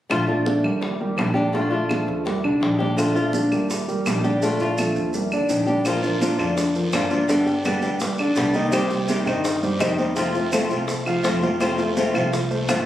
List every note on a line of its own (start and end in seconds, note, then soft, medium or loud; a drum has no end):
0.10 0.61 A#1 medium
0.10 0.27 D3 medium
0.10 0.28 A3 medium
0.10 0.27 D4 medium
0.10 0.26 F4 medium
0.10 high bongo medium
0.10 high conga soft
0.10 claves medium
0.27 0.43 F3 medium
0.27 0.81 A3 soft
0.27 0.81 D4 medium
0.27 0.81 F4 medium
0.27 0.43 F4 medium
0.27 0.43 A4 medium
0.27 high conga soft
0.46 0.61 D3 medium
0.46 0.61 D4 medium
0.46 0.61 D5 medium
0.46 high bongo soft
0.46 high conga medium
0.64 1.14 D#2 medium
0.64 0.94 G3 medium
0.64 0.94 G4 medium
0.64 0.94 A#4 medium
0.64 high conga soft
0.64 claves medium
0.81 muted nylon-string guitar stroke medium
0.81 high bongo medium
0.81 high conga soft
1.00 1.30 G3 medium
1.00 1.30 G4 medium
1.00 1.30 A#4 medium
1.00 high conga soft
1.17 2.02 A#1 medium
1.17 1.35 D#3 soft
1.17 1.35 G3 soft
1.17 1.34 D4 soft
1.17 1.33 G4 medium
1.17 high bongo medium
1.17 low bongo medium
1.17 high conga medium
1.17 claves medium
1.34 1.51 D3 medium
1.34 1.53 G3 medium
1.34 1.53 D4 medium
1.34 1.51 D4 medium
1.34 1.52 G4 medium
1.34 1.52 D5 medium
1.34 high conga medium
1.53 1.71 D3 medium
1.53 1.84 D3 medium
1.53 1.71 A3 medium
1.53 1.84 D4 medium
1.53 1.71 D4 medium
1.53 1.69 F4 medium
1.53 high bongo medium
1.53 high conga soft
1.71 2.25 A3 medium
1.71 2.25 D4 medium
1.71 2.25 F4 medium
1.71 high bongo soft
1.71 high conga soft
1.89 2.20 F3 medium
1.89 2.20 F4 medium
1.89 2.20 A4 medium
1.89 high bongo soft
1.89 high conga medium
1.89 claves medium
2.08 2.42 D#2 medium
2.08 high bongo soft
2.08 high conga soft
2.25 2.41 G3 medium
2.25 2.41 G4 medium
2.25 2.42 A#4 medium
2.25 muted nylon-string guitar stroke medium
2.25 high bongo medium
2.25 high conga soft
2.43 2.61 C2 medium
2.43 2.74 D3 medium
2.43 2.74 D4 medium
2.43 2.74 D5 medium
2.43 high bongo soft
2.43 high conga soft
2.43 claves medium
2.60 3.46 A#1 medium
2.60 2.79 D#3 medium
2.60 2.79 G3 soft
2.60 2.79 D4 soft
2.60 2.77 G4 soft
2.60 high bongo medium
2.60 low bongo medium
2.60 high conga soft
2.79 3.10 D3 medium
2.79 2.97 G3 medium
2.79 2.96 D4 medium
2.79 3.10 D4 medium
2.79 2.97 G4 medium
2.79 3.10 D5 medium
2.79 high conga medium
2.97 3.15 D3 medium
2.97 3.15 A3 medium
2.97 3.15 D4 medium
2.97 3.14 F4 medium
2.97 high bongo medium
2.97 high conga soft
2.97 claves medium
2.97 maracas medium
3.15 3.31 F3 medium
3.15 3.70 A3 soft
3.15 3.70 D4 medium
3.15 3.69 F4 medium
3.15 3.31 F4 medium
3.15 3.31 A4 medium
3.15 high conga soft
3.15 maracas soft
3.33 3.49 D3 medium
3.33 3.49 D4 medium
3.33 3.49 D5 medium
3.33 high bongo medium
3.33 high conga medium
3.33 maracas medium
3.51 4.02 D#2 medium
3.51 3.82 G3 medium
3.51 3.82 G4 medium
3.51 3.82 A#4 medium
3.51 claves medium
3.51 maracas soft
3.70 muted nylon-string guitar stroke medium
3.70 high bongo medium
3.70 high conga soft
3.70 maracas medium
3.88 4.18 G3 medium
3.88 4.18 G4 medium
3.88 4.18 A#4 medium
3.88 high conga soft
3.88 maracas soft
4.05 4.90 A#1 medium
4.05 4.24 D#3 soft
4.05 4.24 G3 medium
4.05 4.24 D4 medium
4.05 4.23 G4 medium
4.05 high bongo medium
4.05 low bongo medium
4.05 high conga medium
4.05 claves medium
4.05 maracas medium
4.24 4.39 D3 medium
4.24 4.42 G3 soft
4.24 4.42 D4 medium
4.24 4.39 D4 medium
4.24 4.41 G4 medium
4.24 4.40 D5 medium
4.24 high conga medium
4.24 maracas soft
4.42 4.72 D3 medium
4.42 4.60 D3 medium
4.42 4.60 A3 medium
4.42 4.72 D4 medium
4.42 4.60 D4 medium
4.42 4.59 F4 medium
4.42 4.72 D5 medium
4.42 high bongo medium
4.42 high conga soft
4.42 maracas medium
4.60 5.14 A3 medium
4.60 5.13 D4 medium
4.60 5.14 F4 medium
4.60 high bongo medium
4.60 high conga soft
4.60 maracas soft
4.78 5.08 F3 medium
4.78 5.08 F4 medium
4.78 5.08 A4 medium
4.78 low bongo medium
4.78 high conga medium
4.78 claves medium
4.78 maracas medium
4.96 5.46 D#2 medium
4.96 low bongo medium
4.96 high conga soft
4.96 maracas soft
5.13 5.29 G3 medium
5.13 5.30 G4 medium
5.13 5.29 A#4 medium
5.13 muted nylon-string guitar stroke medium
5.13 low bongo medium
5.13 high conga soft
5.13 maracas medium
5.32 5.62 D3 medium
5.32 5.62 D4 medium
5.32 5.62 D5 medium
5.32 low bongo medium
5.32 high conga soft
5.32 claves medium
5.32 maracas soft
5.49 6.34 A#1 medium
5.49 5.67 D#3 soft
5.49 5.67 G3 soft
5.49 5.66 D4 medium
5.49 5.65 G4 medium
5.49 low bongo loud
5.49 high conga soft
5.49 maracas medium
5.66 5.83 D3 medium
5.66 5.86 G3 soft
5.66 5.85 D4 medium
5.66 5.83 D4 medium
5.66 5.85 G4 medium
5.66 5.84 D5 medium
5.66 low bongo medium
5.66 high conga medium
5.66 maracas soft
5.85 6.03 F3 medium
5.85 6.01 F3 medium
5.85 6.03 A#3 medium
5.85 6.03 D4 medium
5.85 6.01 F4 medium
5.85 6.01 A#4 medium
5.85 high bongo medium
5.85 high conga soft
5.85 long guiro medium
5.85 claves medium
5.85 maracas medium
6.02 6.34 F3 medium
6.02 6.20 A#3 soft
6.02 6.21 D4 soft
6.02 6.21 F4 soft
6.02 6.34 F4 medium
6.02 6.34 A#4 medium
6.02 high conga soft
6.02 maracas soft
6.21 6.39 F3 medium
6.21 6.39 A#3 medium
6.21 6.39 D4 medium
6.21 6.37 F4 medium
6.21 high bongo soft
6.21 high conga medium
6.21 short guiro medium
6.21 maracas medium
6.39 6.90 F2 medium
6.39 6.69 D3 medium
6.39 6.56 A#3 soft
6.39 6.56 D4 soft
6.39 6.70 D4 medium
6.39 6.56 F4 soft
6.39 6.70 D5 medium
6.39 short guiro medium
6.39 claves medium
6.39 maracas soft
6.56 muted nylon-string guitar stroke medium
6.56 high bongo medium
6.56 high conga soft
6.56 long guiro medium
6.56 maracas medium
6.75 6.91 F3 medium
6.75 6.91 F4 medium
6.75 6.91 A#4 medium
6.75 high conga soft
6.75 maracas soft
6.92 7.78 G2 medium
6.92 7.24 D3 medium
6.92 7.11 F3 medium
6.92 7.11 A#3 medium
6.92 7.24 D4 medium
6.92 7.10 D4 medium
6.92 7.09 F4 medium
6.92 7.24 D5 medium
6.92 high bongo medium
6.92 low bongo medium
6.92 high conga medium
6.92 short guiro medium
6.92 claves medium
6.92 maracas medium
7.10 7.29 A#3 soft
7.10 7.28 D4 soft
7.10 7.29 F4 soft
7.10 high conga medium
7.10 short guiro medium
7.10 maracas soft
7.28 7.46 D3 medium
7.28 7.59 D3 medium
7.28 7.47 G3 medium
7.28 7.47 B3 medium
7.28 7.59 D4 medium
7.28 7.46 D4 medium
7.28 7.45 G4 medium
7.28 7.59 D5 medium
7.28 high bongo medium
7.28 long guiro medium
7.28 maracas medium
7.46 7.64 B3 soft
7.46 7.64 D4 soft
7.46 7.64 G4 medium
7.46 high bongo soft
7.46 high conga soft
7.46 maracas soft
7.64 7.82 D3 medium
7.64 7.82 G3 medium
7.64 7.95 G3 medium
7.64 7.83 B3 medium
7.64 7.82 D4 medium
7.64 7.81 G4 medium
7.64 7.95 G4 medium
7.64 7.96 B4 medium
7.64 high bongo medium
7.64 high conga medium
7.64 short guiro medium
7.64 claves medium
7.64 maracas medium
7.82 8.33 D2 medium
7.82 8.00 B3 soft
7.82 8.01 D4 soft
7.82 8.00 G4 medium
7.82 high bongo soft
7.82 short guiro medium
7.82 maracas soft
8.00 8.16 G3 medium
8.00 8.16 G4 medium
8.00 8.17 B4 medium
8.00 muted nylon-string guitar stroke medium
8.00 high bongo medium
8.00 high conga soft
8.00 long guiro medium
8.00 maracas medium
8.18 8.49 D3 medium
8.18 8.49 D4 medium
8.18 8.49 D5 medium
8.18 high bongo soft
8.18 high conga soft
8.18 claves medium
8.18 maracas soft
8.35 9.21 C2 medium
8.35 8.54 D3 medium
8.35 8.54 G3 medium
8.35 8.55 B3 medium
8.35 8.54 D4 medium
8.35 8.53 G4 medium
8.35 high bongo medium
8.35 low bongo medium
8.35 high conga soft
8.35 short guiro medium
8.35 maracas medium
8.53 8.70 D#3 medium
8.53 8.72 B3 soft
8.53 8.73 D4 soft
8.53 8.70 D#4 medium
8.53 8.72 G4 soft
8.53 8.70 D#5 medium
8.53 high conga medium
8.53 short guiro medium
8.53 maracas soft
8.71 8.90 C3 medium
8.71 8.90 D#3 medium
8.71 8.90 G3 medium
8.71 8.88 G3 medium
8.71 8.89 C4 medium
8.71 8.88 G4 medium
8.71 8.88 C5 medium
8.71 high bongo medium
8.71 long guiro medium
8.71 claves medium
8.71 maracas medium
8.89 9.21 G3 medium
8.89 9.07 G3 soft
8.89 9.08 C4 soft
8.89 9.08 G4 medium
8.89 9.21 G4 medium
8.89 9.21 C5 medium
8.89 high conga soft
8.89 maracas soft
9.07 9.26 C3 medium
9.07 9.26 D#3 medium
9.07 9.26 G3 medium
9.07 9.26 C4 medium
9.07 9.25 G4 medium
9.07 high bongo soft
9.07 high conga medium
9.07 short guiro medium
9.07 maracas medium
9.26 9.77 G2 medium
9.26 9.56 D#3 medium
9.26 9.44 G3 soft
9.26 9.44 C4 soft
9.26 9.57 D#4 medium
9.26 9.44 G4 medium
9.26 9.57 D#5 medium
9.26 high conga soft
9.26 short guiro medium
9.26 claves medium
9.26 maracas soft
9.44 muted nylon-string guitar stroke medium
9.44 high bongo medium
9.44 high conga soft
9.44 long guiro medium
9.44 maracas medium
9.63 9.78 G3 medium
9.63 9.78 G4 medium
9.63 9.78 C5 medium
9.63 high conga soft
9.63 maracas soft
9.79 10.65 F2 medium
9.79 9.97 C3 medium
9.79 9.98 D#3 medium
9.79 10.10 D#3 medium
9.79 9.98 G3 medium
9.79 9.98 C4 medium
9.79 10.10 D#4 medium
9.79 9.96 G4 medium
9.79 10.11 D#5 medium
9.79 high bongo medium
9.79 low bongo medium
9.79 high conga medium
9.79 short guiro medium
9.79 claves medium
9.79 maracas medium
9.98 10.16 G3 soft
9.98 10.16 C4 soft
9.98 10.16 G4 soft
9.98 high conga medium
9.98 short guiro medium
9.98 maracas soft
10.16 10.34 C3 medium
10.16 10.46 F3 medium
10.16 10.34 F3 medium
10.16 10.34 A3 medium
10.16 10.34 C4 medium
10.16 10.46 F4 medium
10.16 10.33 F4 medium
10.16 10.46 F5 medium
10.16 high bongo medium
10.16 high conga soft
10.16 long guiro medium
10.16 maracas medium
10.34 10.51 A3 soft
10.34 10.52 C4 soft
10.34 10.52 F4 soft
10.34 high bongo soft
10.34 high conga soft
10.34 maracas soft
10.52 10.70 C3 medium
10.52 10.70 F3 medium
10.52 10.82 A3 medium
10.52 10.70 A3 medium
10.52 10.69 C4 medium
10.52 10.68 F4 medium
10.52 10.82 A4 medium
10.52 10.83 C5 medium
10.52 high bongo medium
10.52 high conga loud
10.52 short guiro medium
10.52 claves medium
10.52 maracas medium
10.70 11.21 C2 medium
10.70 10.86 A3 soft
10.70 10.86 C4 soft
10.70 10.87 F4 medium
10.70 high bongo soft
10.70 high conga soft
10.70 short guiro medium
10.70 maracas soft
10.87 11.03 A3 medium
10.87 11.03 A4 medium
10.87 11.04 C5 medium
10.87 muted nylon-string guitar stroke medium
10.87 high bongo medium
10.87 high conga soft
10.87 long guiro medium
10.87 maracas medium
11.06 11.36 F3 medium
11.06 11.37 F4 medium
11.06 11.37 F5 medium
11.06 high bongo soft
11.06 high conga soft
11.06 claves medium
11.06 maracas soft
11.23 12.09 F2 medium
11.23 11.41 C3 medium
11.23 11.42 F3 medium
11.23 11.42 A3 medium
11.23 11.42 C4 medium
11.23 11.41 F4 medium
11.23 high bongo medium
11.23 low bongo medium
11.23 high conga soft
11.23 short guiro medium
11.23 maracas medium
11.42 11.57 F3 medium
11.42 11.60 A3 soft
11.42 11.60 C4 soft
11.42 11.60 F4 soft
11.42 11.58 F4 medium
11.42 11.58 F5 medium
11.42 high conga medium
11.42 short guiro medium
11.42 maracas soft
11.60 11.78 C3 medium
11.60 11.78 F3 medium
11.60 11.76 A3 medium
11.60 11.78 A3 medium
11.60 11.79 C4 medium
11.60 11.77 F4 medium
11.60 11.76 A4 medium
11.60 11.76 C5 medium
11.60 high bongo medium
11.60 high conga soft
11.60 long guiro medium
11.60 claves medium
11.60 maracas medium
11.78 12.08 A3 medium
11.78 11.96 A3 soft
11.78 11.97 C4 soft
11.78 11.96 F4 soft
11.78 12.08 A4 medium
11.78 12.09 C5 medium
11.78 high conga soft
11.78 maracas soft
11.96 12.14 C3 medium
11.96 12.14 F3 medium
11.96 12.14 A3 medium
11.96 12.14 C4 medium
11.96 12.13 F4 medium
11.96 high bongo medium
11.96 high conga medium
11.96 short guiro medium
11.96 maracas medium
12.13 12.65 C2 loud
12.13 12.44 F3 medium
12.13 12.32 A3 soft
12.13 12.33 C4 soft
12.13 12.44 F4 medium
12.13 12.32 F4 medium
12.13 12.44 F5 medium
12.13 high conga soft
12.13 short guiro medium
12.13 claves medium
12.13 maracas soft
12.32 muted nylon-string guitar stroke medium
12.32 high bongo medium
12.32 high conga soft
12.32 long guiro medium
12.32 maracas medium
12.50 12.65 A3 medium
12.50 12.66 A4 medium
12.50 12.66 C5 medium
12.50 high conga soft
12.50 maracas soft
12.68 12.86 G1 medium
12.68 12.86 C3 medium
12.68 12.86 F3 medium
12.68 12.86 A3 medium
12.68 12.86 C4 medium
12.68 12.86 F4 medium
12.68 12.84 F4 medium
12.68 12.86 F5 medium
12.68 high bongo medium
12.68 low bongo medium
12.68 high conga medium
12.68 short guiro medium
12.68 claves medium
12.68 maracas medium